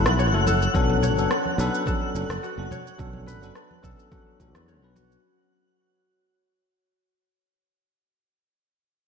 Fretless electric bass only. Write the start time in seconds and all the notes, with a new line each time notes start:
0.06 B1
0.33 F#1
0.74 B1
1.17 F#1
1.58 B1
2.15 F#1
2.29 F#1
2.58 F#1
2.99 B1
3.41 F#1
3.83 B1
4.40 A1
4.54 E2
4.82 B1